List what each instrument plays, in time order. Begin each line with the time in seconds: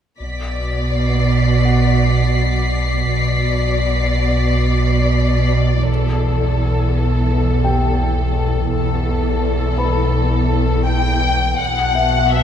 0.20 sub bass B1, double bass section B1, cello section B2, violin section D5 B6
0.92 violin section C7
1.65 grand piano F#5
3.07 sub bass B1, double bass section B1, cello section B2, violin section D5
5.88 double bass section E1, sub bass B1, cello section E2, violin section A4
7.65 grand piano G4 G5
8.70 double bass section E1, sub bass B1, cello section E2, violin section A4
9.78 grand piano B4 B5
10.85 violin section G5
11.58 sub bass B1, double bass section B1, cello section B2, violin section F#5 G#5 A5 F#6
11.95 grand piano E5
12.31 violin section E5